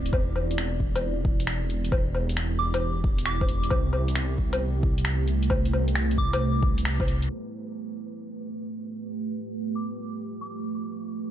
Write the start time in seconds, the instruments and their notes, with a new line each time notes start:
Already playing: detuned saw bass D1, ambient pad E4 D5
0.06 closed hi-hat
0.13 detuned saw bass E1, ambient pad B3 G4, kick, low woodblock
0.36 low woodblock
0.51 closed hi-hat
0.58 finger snap
0.80 kick
0.96 closed hi-hat, low woodblock
1.25 kick
1.40 closed hi-hat
1.47 finger snap
1.70 closed hi-hat
1.85 closed hi-hat
1.92 kick, low woodblock
2.15 low woodblock
2.29 closed hi-hat
2.37 finger snap
2.59 synth bell D6
2.74 closed hi-hat, low woodblock
3.04 kick
3.18 closed hi-hat
3.26 synth bell D6, finger snap
3.41 kick, low woodblock
3.49 closed hi-hat
3.63 closed hi-hat
3.70 detuned saw bass C2, ambient pad A3 C5, kick, low woodblock
3.93 low woodblock
4.08 closed hi-hat
4.16 finger snap
4.38 kick
4.53 closed hi-hat, low woodblock
4.83 kick
4.98 closed hi-hat
5.05 finger snap
5.28 closed hi-hat
5.43 closed hi-hat
5.50 ambient pad B4, kick, low woodblock
5.65 closed hi-hat
5.73 low woodblock
5.88 closed hi-hat
5.95 finger snap
6.11 closed hi-hat
6.18 synth bell D6, kick
6.33 closed hi-hat, low woodblock
6.63 kick
6.78 closed hi-hat
6.85 finger snap
7.00 kick, low woodblock
7.08 closed hi-hat
7.22 closed hi-hat
7.29 ambient pad A3 F4 G4 B4
9.75 synth bell D6
10.41 synth bell D6
10.87 ambient pad C4 E4 D5